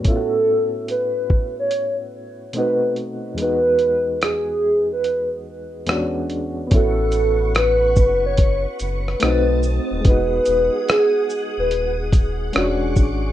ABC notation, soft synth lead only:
X:1
M:4/4
L:1/16
Q:"Swing 16ths" 1/4=72
K:E
V:1 name="Soft synth lead"
A4 B3 c2 z3 B2 z2 | B4 G3 B2 z6 z | A4 B3 c2 z3 B2 z2 | B4 G3 B2 z6 z |]